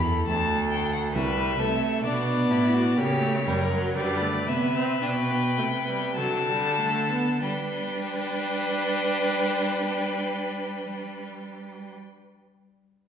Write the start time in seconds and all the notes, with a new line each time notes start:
Already playing: E2 B5
0.07 A4
0.27 D2 A5
0.71 G5
0.93 F#5
1.14 C2 G3 B4 E5
1.59 C3 A3 A4
2.04 B2 B3 D4 D5
2.50 A2 E4
2.74 F#4
2.97 C#3 A#3 G4 C#5
3.21 A3
3.46 F#2 G3 A#4
3.70 F#3
3.96 D3 G3 B4 D5
4.21 A3
4.48 C3 B3 E5
4.75 C4
5.02 B2 D4 G5
5.30 B3
5.58 C3 A3
5.87 G3
6.16 D3 F#3 A4 A5
6.47 G3
6.78 A3
7.09 B3
7.42 G3 D4 B4 G5